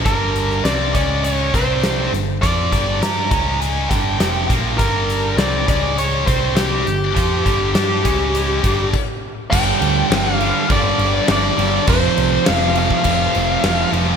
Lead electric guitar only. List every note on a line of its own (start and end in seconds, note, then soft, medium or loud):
0.05 0.66 A#4 medium
0.64 0.94 D5 medium
0.95 1.24 D5 medium
1.25 1.55 C#5 medium
1.55 2.09 C5 medium
2.42 3.03 D5 medium
3.03 3.30 A#5 medium
3.31 3.59 A#5 medium
3.61 3.88 G#5 medium
3.90 4.45 G5 medium
4.78 5.33 A#4 medium
5.38 5.67 D5 medium
5.69 5.96 D5 loud
5.99 6.26 C#5 medium
6.26 6.54 C5 medium
6.55 8.88 G4 medium
9.51 10.34 G5 loud
10.34 10.73 F5 loud
10.71 11.25 D5 loud
11.31 11.85 D5 medium
11.89 12.49 C5 loud
12.48 12.77 F5 medium
12.78 13.90 F5 loud